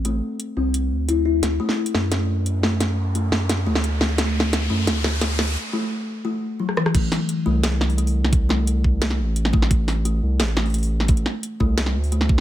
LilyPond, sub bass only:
\new Staff \with { instrumentName = "Sub bass" } { \clef bass \time 4/4 \key a \dorian \tempo 4 = 174 a,,8 r4 c,4 d,4. | d,8 r4 fis,2~ fis,8~ | fis,4. fis,4 d,4.~ | d,4. fis,8 d,2 |
r1 | a,,8 r4 c,2~ c,8~ | c,4. c,4 a,,4.~ | a,,4. c,8 a,,2~ |
a,,8 r4 c,4 d,4. | }